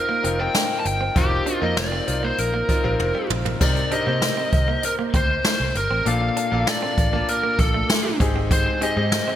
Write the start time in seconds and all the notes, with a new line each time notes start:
Already playing: C4 D#4 F4 G4 A#4
0.09 A#3
0.23 F1 C4 D#4 F4 A#4, closed hi-hat
0.39 C4 D#4 F4 A#4 G5
0.54 D4, snare, closed hi-hat
0.80 A5
0.85 G1 G5, muted clean electric guitar stroke, closed hi-hat
1.01 C4
1.15 F1 C4 D#4 F4 G4 A#4, kick, closed hi-hat
1.31 muted clean electric guitar stroke
1.46 D4, closed hi-hat
1.61 F2 A#3 C4 D#4 F4 A#4 D#5
1.77 F1 D5, snare, closed hi-hat
1.92 C4
2.07 C2 C4 D#4 F4 A#4, muted clean electric guitar stroke, closed hi-hat
2.23 A#3 C5
2.38 A#1 A#4, closed hi-hat
2.54 A#3
2.68 C4 D#4 F4 A#4, muted clean electric guitar stroke, kick, closed hi-hat
2.84 A#1 G3 C4 D#4 F4 A#4
3.00 F1, high tom
3.15 G3
3.30 A#1, muted clean electric guitar stroke, mid tom
3.45 A#3, floor tom
3.60 C2 C3 C4 D#4 G4 A#4 D5, kick, crash
3.76 muted clean electric guitar stroke, closed hi-hat
3.91 C4 D4 D#4 G4 A#4 D#5, closed hi-hat
4.06 C3 A#3 C4 D#4 G4 C5
4.22 snare, closed hi-hat
4.37 C4
4.52 C2, muted clean electric guitar stroke, kick, closed hi-hat
4.68 A#3
4.83 A#4, muted clean electric guitar stroke, closed hi-hat
4.99 A#3
5.14 D2 C4 C5, kick, closed hi-hat
5.44 D4 C5, snare, closed hi-hat
5.60 C2
5.75 G1 A#4, muted clean electric guitar stroke, closed hi-hat
5.90 A1 C4
6.05 A#1 A#2 A#3 D4 F4 A4 F5, closed hi-hat
6.21 muted clean electric guitar stroke
6.37 D4, closed hi-hat
6.51 A#1 A#3 D4 F4 A4
6.67 D5, snare, closed hi-hat
6.82 C4
6.97 A1, muted clean electric guitar stroke, kick, closed hi-hat
7.13 A#3 D4 F4 A5
7.28 A#4, closed hi-hat
7.43 A#3
7.59 A#1 A4, muted clean electric guitar stroke, kick, closed hi-hat
7.74 A3
7.89 snare, closed hi-hat
8.05 A3
8.20 G#1 G#2 C4 D#4 G4 G#4, muted clean electric guitar stroke, kick, closed hi-hat
8.36 C4
8.51 C5, kick, closed hi-hat
8.66 muted clean electric guitar stroke
8.81 C4 D#4 G4 G#4 D#5, closed hi-hat
8.96 G#2 G#3 C4 D#4 G4 G#4
9.12 snare, closed hi-hat
9.28 C4